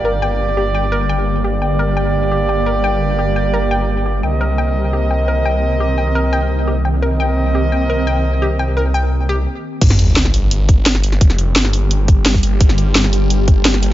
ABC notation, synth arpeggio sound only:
X:1
M:4/4
L:1/8
Q:1/4=172
K:Gm
V:1 name="Synth arpeggio sound"
B g z G g B g z | G g B g z G g B | g z G g B g z G | g B g z G g B g |
z G g B g z G g | B g z G g B g z | G g B g z G z2 | z8 |
z8 | z8 |]